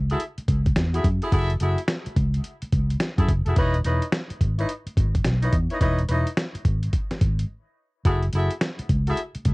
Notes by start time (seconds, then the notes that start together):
Already playing: C#2
0.10 E4 F#4 G#4 A4 E5, closed hi-hat
0.20 closed hi-hat
0.38 muted fingered electric bass stroke, closed hi-hat
0.48 C#2, kick, closed hi-hat
0.66 kick, closed hi-hat
0.76 E2, snare, closed hi-hat
0.94 E4 F#4 G#4 A4 E5, closed hi-hat
1.04 F#2, kick, closed hi-hat
1.22 E4 F#4 G#4 A4 E5, closed hi-hat
1.32 F#1 E4 F#4 G#4 A4 E5, kick, closed hi-hat
1.50 closed hi-hat
1.60 F#1 E4 F#4 G#4 A4 E5, closed hi-hat
1.78 closed hi-hat
1.88 snare, closed hi-hat
2.06 muted fingered electric bass stroke, closed hi-hat
2.16 C#2, kick, closed hi-hat
2.34 closed hi-hat
2.44 closed hi-hat
2.62 muted fingered electric bass stroke, closed hi-hat
2.72 C#2, kick, closed hi-hat
2.90 closed hi-hat
3.00 snare, closed hi-hat
3.18 F#2 E4 F#4 G#4 A4 E5, kick, closed hi-hat
3.28 F#1, kick, closed hi-hat
3.46 F1 E4 F#4 G#4 A4 E5, closed hi-hat
3.56 E1 D#4 E4 B4 C#5 D#5, kick, closed hi-hat
3.74 closed hi-hat
3.84 E1 D#4 E4 B4 C#5 D#5, closed hi-hat
4.02 closed hi-hat
4.12 snare, closed hi-hat
4.30 muted fingered electric bass stroke, closed hi-hat
4.41 G#1, kick, closed hi-hat
4.58 D#4 E4 B4 C#5 D#5, closed hi-hat
4.69 closed hi-hat
4.86 muted fingered electric bass stroke, closed hi-hat
4.97 G#1, kick, closed hi-hat
5.15 kick, closed hi-hat
5.24 B1, snare, closed hi-hat
5.42 D#4 E4 B4 C#5 D#5, closed hi-hat
5.53 E2, kick, closed hi-hat
5.70 D#4 E4 B4 C#5 D#5, closed hi-hat
5.81 E1 D#4 E4 B4 C#5 D#5, kick, closed hi-hat
5.98 closed hi-hat
6.09 E1 D#4 E4 B4 C#5 D#5, closed hi-hat
6.27 closed hi-hat
6.37 snare, closed hi-hat
6.55 muted fingered electric bass stroke, closed hi-hat
6.65 G#1, kick, closed hi-hat
6.83 closed hi-hat
6.93 kick, closed hi-hat
7.11 muted fingered electric bass stroke, snare, closed hi-hat
7.21 G#1, kick, closed hi-hat
7.39 closed hi-hat
8.05 F#1 E4 F#4 G#4 A4 E5, kick, closed hi-hat
8.23 closed hi-hat
8.33 F#1 E4 F#4 G#4 A4 E5, closed hi-hat
8.51 closed hi-hat
8.61 snare, closed hi-hat
8.79 muted fingered electric bass stroke, closed hi-hat
8.89 C#2, kick, closed hi-hat
9.07 E4 F#4 G#4 A4 E5, closed hi-hat
9.17 closed hi-hat
9.35 muted fingered electric bass stroke, closed hi-hat
9.45 C#2, kick, closed hi-hat